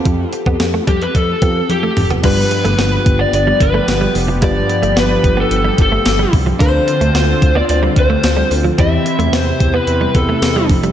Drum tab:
CC |----------------|x---------------|----------------|----------------|
HH |x-x-x-xxx-x-x-ox|x-xxx-x-x-x-x-o-|x-xxx-x-x-x-x-o-|x-xxx-x-x-x-x-o-|
TB |----------------|----x-------x---|----x-------x---|----x-------x---|
SD |----o-----------|----o-------o---|----o-------o---|----o-------o---|
T1 |------------o---|----------------|----------------|----------------|
T2 |--------------o-|----------------|----------------|----------------|
FT |---------------o|----------------|----------------|----------------|
BD |o--o--o-o-o-----|o-----o---o-----|o-----o---o---o-|o-----o---o-----|

CC |----------------|
HH |x-xxx-x-x-x-x-ox|
TB |----x-------x---|
SD |----o-------o---|
T1 |----------------|
T2 |----------------|
FT |----------------|
BD |o-----o---o---o-|